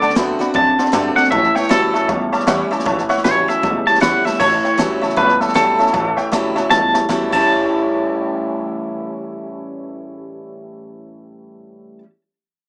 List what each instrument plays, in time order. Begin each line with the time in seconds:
Already playing: steel-string acoustic guitar D3, clean electric guitar D5
0.01 clean electric guitar D3 A3, honky-tonk piano D5 F#5 A5, muted upright bass stroke, snare
0.10 snare
0.15 upright bass D2, steel-string acoustic guitar D3 A3 C4 F#4, clean electric guitar D3 B3, honky-tonk piano D5 F#5 B5, snare, hi-hat pedal
0.39 clean electric guitar D3 B3, steel-string acoustic guitar C4 F#4, honky-tonk piano D5 F#5 B5, muted upright bass stroke, snare
0.54 upright bass F#2, steel-string acoustic guitar A2, clean electric guitar D3 C4 A5, honky-tonk piano D5 F#5 A5, kick, snare
0.78 clean electric guitar D3 C4, honky-tonk piano D5 F#5 C6, muted upright bass stroke, snare
0.86 snare
0.92 upright bass G2, steel-string acoustic guitar D3 A3 C4 F#4, clean electric guitar D3 C4, honky-tonk piano D5 F#5 A5, snare, hi-hat pedal
1.16 clean electric guitar D3 C4 F#5, honky-tonk piano D5 F#5 A5, muted upright bass stroke, snare
1.24 snare
1.31 upright bass A1, clean electric guitar A2 E3 E5, steel-string acoustic guitar A2, honky-tonk piano C#5 E5 A5, kick, snare
1.44 snare
1.55 clean electric guitar A2 E3 C#5, honky-tonk piano C#5 E5 G5, muted upright bass stroke, snare
1.63 snare
1.69 upright bass A1, clean electric guitar A2 F#3 A4, steel-string acoustic guitar E3 G3 C#4 E4, honky-tonk piano C#5 E5 B5, snare, hi-hat pedal
1.93 upright bass A1, clean electric guitar A2 F#3, steel-string acoustic guitar C#4 E4, honky-tonk piano C#5 E5 A5, snare
2.08 upright bass C#2, steel-string acoustic guitar E2, clean electric guitar A2 G3, honky-tonk piano C#5 E5 A5, kick, snare
2.32 clean electric guitar A2 G3, honky-tonk piano C#5 E5 A5, muted upright bass stroke, snare
2.40 snare
2.47 upright bass E2, clean electric guitar A2 G3, steel-string acoustic guitar E3 G3 C#4 E4, honky-tonk piano C#5 E5 F#5, snare, hi-hat pedal
2.71 clean electric guitar A2 G3, steel-string acoustic guitar C#4 E4, honky-tonk piano C#5 E5 A5, muted upright bass stroke, snare
2.79 snare
2.85 upright bass A1, steel-string acoustic guitar A2, clean electric guitar A2 E3, honky-tonk piano C#5 E5 A5, kick, snare
2.98 snare
3.09 clean electric guitar A2 E3, honky-tonk piano C#5 E5 F#5, muted upright bass stroke, snare
3.18 snare
3.24 upright bass A1, clean electric guitar A2 F#3 C#5, steel-string acoustic guitar E3 G3 C#4 E4, honky-tonk piano C#5 E5 B5, snare, hi-hat pedal
3.48 clean electric guitar A2 F#3 E5, steel-string acoustic guitar C#4 E4, honky-tonk piano C#5 E5 A5, muted upright bass stroke, snare
3.63 upright bass C#2, steel-string acoustic guitar E2, clean electric guitar A2 G3, honky-tonk piano C#5 E5 A5, kick, snare
3.86 clean electric guitar A2 G3 A5, honky-tonk piano C#5 E5 A5, muted upright bass stroke, snare
3.95 snare
4.00 upright bass D2, clean electric guitar A2 G3 F#5, steel-string acoustic guitar E3 G3 C#4 E4, honky-tonk piano C#5 E5 B5, snare, hi-hat pedal
4.24 clean electric guitar A2 G3 E5, steel-string acoustic guitar C#4 E4, honky-tonk piano C#5 E5 A5, muted upright bass stroke, snare
4.34 snare
4.40 upright bass A1, steel-string acoustic guitar A2, clean electric guitar A2 E3 C#5, honky-tonk piano C#5 E5 A5, kick, snare, crash
4.64 honky-tonk piano C#5 E5 G5, muted upright bass stroke, snare
4.78 upright bass A1, clean electric guitar A2 F#3, steel-string acoustic guitar E3 G3 C#4 E4, honky-tonk piano C#5 E5 A5, kick, snare, hi-hat pedal
5.01 upright bass C#2, clean electric guitar A2 F#3, steel-string acoustic guitar C#4 E4, honky-tonk piano C#5 E5 A5, snare
5.10 snare
5.16 upright bass C#2, steel-string acoustic guitar E2, clean electric guitar A2 G3 B4, honky-tonk piano C#5 E5 A5, kick, snare
5.29 snare
5.41 clean electric guitar A4, honky-tonk piano C#5 E5 A5, muted upright bass stroke, snare
5.48 snare
5.54 upright bass E2, clean electric guitar A2 F#3 A4, steel-string acoustic guitar E3 G3 C#4 E4, honky-tonk piano C#5 E5 A5, kick, snare, hi-hat pedal
5.79 upright bass E2, clean electric guitar A2 F#3, steel-string acoustic guitar C#4 E4, honky-tonk piano C#5 E5 A5, snare
5.87 snare
5.93 upright bass A1, clean electric guitar A2 E3, steel-string acoustic guitar A2, honky-tonk piano C#5 E5 A5, kick, snare
6.17 honky-tonk piano C#5 E5 G5, muted upright bass stroke, snare
6.32 upright bass A1, clean electric guitar A2 F#3, steel-string acoustic guitar E3 G3 C#4 E4, honky-tonk piano C#5 E5 A5, kick, snare, hi-hat pedal
6.55 upright bass C#2, clean electric guitar A2 F#3, steel-string acoustic guitar C#4 E4, honky-tonk piano C#5 E5 A5, snare
6.70 upright bass C#2, steel-string acoustic guitar E2, clean electric guitar A2 G3 A5, honky-tonk piano C#5 E5 A5, kick, snare
6.94 honky-tonk piano C#5 E5 A5, muted upright bass stroke, snare
7.09 upright bass E2, clean electric guitar A2 F#3, steel-string acoustic guitar E3 G3 C#4 E4, honky-tonk piano C#5 E5 A5, kick, snare, hi-hat pedal
7.30 upright bass A1, clean electric guitar A2 E3 G3 A5, steel-string acoustic guitar A2 E3 G3, honky-tonk piano C#5 E5, kick, crash
7.34 steel-string acoustic guitar C#4 E4, clean electric guitar C#4 E4, honky-tonk piano A5